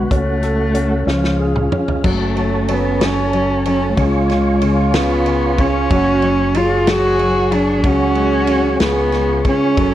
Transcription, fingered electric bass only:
0, 0, Header, 1, 2, 480
1, 0, Start_track
1, 0, Key_signature, 3, "minor"
1, 0, Tempo, 643708
1, 86, Time_signature, 6, 3, 24, 8
1, 7413, End_track
2, 0, Start_track
2, 0, Title_t, "Fingered electric bass"
2, 0, Program_c, 0, 33
2, 83, Note_on_c, 0, 37, 92
2, 775, Note_off_c, 0, 37, 0
2, 797, Note_on_c, 0, 37, 92
2, 1253, Note_off_c, 0, 37, 0
2, 1524, Note_on_c, 0, 30, 92
2, 2935, Note_off_c, 0, 30, 0
2, 2967, Note_on_c, 0, 37, 98
2, 4376, Note_off_c, 0, 37, 0
2, 4404, Note_on_c, 0, 30, 99
2, 5845, Note_off_c, 0, 30, 0
2, 5845, Note_on_c, 0, 37, 100
2, 6535, Note_off_c, 0, 37, 0
2, 6567, Note_on_c, 0, 37, 94
2, 7017, Note_off_c, 0, 37, 0
2, 7285, Note_on_c, 0, 30, 97
2, 7413, Note_off_c, 0, 30, 0
2, 7413, End_track
0, 0, End_of_file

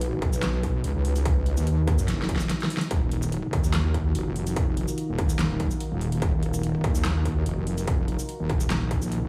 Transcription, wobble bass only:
0, 0, Header, 1, 2, 480
1, 0, Start_track
1, 0, Key_signature, -6, "minor"
1, 0, Tempo, 413793
1, 1455, Time_signature, 4, 2, 24, 8
1, 10771, End_track
2, 0, Start_track
2, 0, Title_t, "Wobble bass"
2, 0, Program_c, 0, 39
2, 0, Note_on_c, 0, 35, 94
2, 238, Note_off_c, 0, 35, 0
2, 255, Note_on_c, 0, 35, 98
2, 957, Note_off_c, 0, 35, 0
2, 976, Note_on_c, 0, 37, 100
2, 1083, Note_off_c, 0, 37, 0
2, 1103, Note_on_c, 0, 37, 100
2, 1802, Note_off_c, 0, 37, 0
2, 1823, Note_on_c, 0, 39, 96
2, 2282, Note_off_c, 0, 39, 0
2, 2302, Note_on_c, 0, 42, 92
2, 2397, Note_off_c, 0, 42, 0
2, 2415, Note_on_c, 0, 30, 102
2, 2895, Note_off_c, 0, 30, 0
2, 3375, Note_on_c, 0, 27, 96
2, 3597, Note_off_c, 0, 27, 0
2, 3614, Note_on_c, 0, 27, 97
2, 4076, Note_off_c, 0, 27, 0
2, 4095, Note_on_c, 0, 39, 96
2, 4797, Note_off_c, 0, 39, 0
2, 4814, Note_on_c, 0, 29, 95
2, 4922, Note_off_c, 0, 29, 0
2, 4942, Note_on_c, 0, 29, 102
2, 5642, Note_off_c, 0, 29, 0
2, 5903, Note_on_c, 0, 27, 95
2, 6362, Note_off_c, 0, 27, 0
2, 6383, Note_on_c, 0, 27, 99
2, 6477, Note_off_c, 0, 27, 0
2, 6495, Note_on_c, 0, 30, 100
2, 6602, Note_off_c, 0, 30, 0
2, 6862, Note_on_c, 0, 27, 101
2, 7197, Note_off_c, 0, 27, 0
2, 7215, Note_on_c, 0, 27, 95
2, 7437, Note_off_c, 0, 27, 0
2, 7455, Note_on_c, 0, 27, 98
2, 7917, Note_off_c, 0, 27, 0
2, 7935, Note_on_c, 0, 39, 100
2, 8637, Note_off_c, 0, 39, 0
2, 8656, Note_on_c, 0, 29, 99
2, 8763, Note_off_c, 0, 29, 0
2, 8782, Note_on_c, 0, 29, 97
2, 9482, Note_off_c, 0, 29, 0
2, 9743, Note_on_c, 0, 27, 100
2, 10202, Note_off_c, 0, 27, 0
2, 10223, Note_on_c, 0, 34, 98
2, 10682, Note_off_c, 0, 34, 0
2, 10703, Note_on_c, 0, 29, 95
2, 10771, Note_off_c, 0, 29, 0
2, 10771, End_track
0, 0, End_of_file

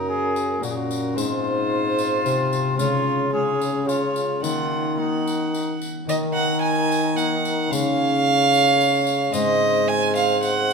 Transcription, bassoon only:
0, 0, Header, 1, 2, 480
1, 0, Start_track
1, 0, Tempo, 544465
1, 1031, Time_signature, 3, 2, 24, 8
1, 9462, End_track
2, 0, Start_track
2, 0, Title_t, "Bassoon"
2, 0, Program_c, 0, 70
2, 0, Note_on_c, 0, 42, 50
2, 545, Note_on_c, 0, 46, 52
2, 558, Note_off_c, 0, 42, 0
2, 1020, Note_off_c, 0, 46, 0
2, 1025, Note_on_c, 0, 44, 57
2, 1964, Note_off_c, 0, 44, 0
2, 1984, Note_on_c, 0, 48, 60
2, 2465, Note_on_c, 0, 49, 65
2, 2478, Note_off_c, 0, 48, 0
2, 3903, Note_on_c, 0, 51, 51
2, 3917, Note_off_c, 0, 49, 0
2, 5121, Note_off_c, 0, 51, 0
2, 5361, Note_on_c, 0, 51, 63
2, 6766, Note_off_c, 0, 51, 0
2, 6807, Note_on_c, 0, 49, 61
2, 8208, Note_off_c, 0, 49, 0
2, 8231, Note_on_c, 0, 44, 71
2, 9462, Note_off_c, 0, 44, 0
2, 9462, End_track
0, 0, End_of_file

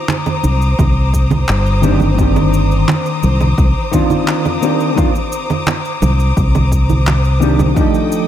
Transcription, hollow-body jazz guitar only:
0, 0, Header, 1, 2, 480
1, 0, Start_track
1, 0, Tempo, 697674
1, 1501, Time_signature, 4, 2, 24, 8
1, 5694, End_track
2, 0, Start_track
2, 0, Title_t, "Hollow-body jazz guitar"
2, 0, Program_c, 0, 26
2, 1248, Note_on_c, 0, 51, 86
2, 1252, Note_on_c, 0, 58, 80
2, 1257, Note_on_c, 0, 60, 77
2, 1266, Note_on_c, 0, 62, 78
2, 1269, Note_on_c, 0, 67, 95
2, 1466, Note_off_c, 0, 51, 0
2, 1468, Note_off_c, 0, 58, 0
2, 1470, Note_off_c, 0, 60, 0
2, 1473, Note_on_c, 0, 51, 80
2, 1475, Note_off_c, 0, 62, 0
2, 1476, Note_off_c, 0, 67, 0
2, 1484, Note_on_c, 0, 58, 66
2, 1495, Note_on_c, 0, 60, 71
2, 1507, Note_on_c, 0, 62, 66
2, 1520, Note_on_c, 0, 67, 90
2, 2659, Note_off_c, 0, 51, 0
2, 2664, Note_off_c, 0, 58, 0
2, 2670, Note_off_c, 0, 60, 0
2, 2675, Note_off_c, 0, 62, 0
2, 2682, Note_off_c, 0, 67, 0
2, 2693, Note_on_c, 0, 51, 87
2, 2696, Note_on_c, 0, 58, 77
2, 2704, Note_on_c, 0, 60, 76
2, 2710, Note_on_c, 0, 62, 80
2, 2718, Note_on_c, 0, 65, 97
2, 3148, Note_off_c, 0, 51, 0
2, 3150, Note_off_c, 0, 58, 0
2, 3154, Note_off_c, 0, 60, 0
2, 3157, Note_off_c, 0, 62, 0
2, 3161, Note_off_c, 0, 65, 0
2, 3170, Note_on_c, 0, 51, 74
2, 3177, Note_on_c, 0, 58, 72
2, 3181, Note_on_c, 0, 60, 74
2, 3186, Note_on_c, 0, 62, 72
2, 3193, Note_on_c, 0, 67, 84
2, 3387, Note_off_c, 0, 51, 0
2, 3390, Note_off_c, 0, 58, 0
2, 3392, Note_off_c, 0, 60, 0
2, 3395, Note_off_c, 0, 62, 0
2, 3399, Note_off_c, 0, 67, 0
2, 3403, Note_on_c, 0, 51, 76
2, 3409, Note_on_c, 0, 58, 72
2, 3414, Note_on_c, 0, 60, 68
2, 3420, Note_on_c, 0, 62, 71
2, 3427, Note_on_c, 0, 65, 83
2, 3497, Note_off_c, 0, 51, 0
2, 3500, Note_off_c, 0, 58, 0
2, 3502, Note_off_c, 0, 60, 0
2, 3505, Note_off_c, 0, 62, 0
2, 3509, Note_off_c, 0, 65, 0
2, 5091, Note_on_c, 0, 51, 83
2, 5097, Note_on_c, 0, 58, 79
2, 5100, Note_on_c, 0, 60, 77
2, 5106, Note_on_c, 0, 62, 79
2, 5114, Note_on_c, 0, 67, 100
2, 5307, Note_off_c, 0, 51, 0
2, 5310, Note_off_c, 0, 58, 0
2, 5312, Note_off_c, 0, 60, 0
2, 5315, Note_off_c, 0, 62, 0
2, 5319, Note_off_c, 0, 67, 0
2, 5324, Note_on_c, 0, 53, 74
2, 5334, Note_on_c, 0, 57, 74
2, 5344, Note_on_c, 0, 62, 68
2, 5358, Note_on_c, 0, 63, 73
2, 5370, Note_on_c, 0, 67, 83
2, 5694, Note_off_c, 0, 53, 0
2, 5694, Note_off_c, 0, 57, 0
2, 5694, Note_off_c, 0, 62, 0
2, 5694, Note_off_c, 0, 63, 0
2, 5694, Note_off_c, 0, 67, 0
2, 5694, End_track
0, 0, End_of_file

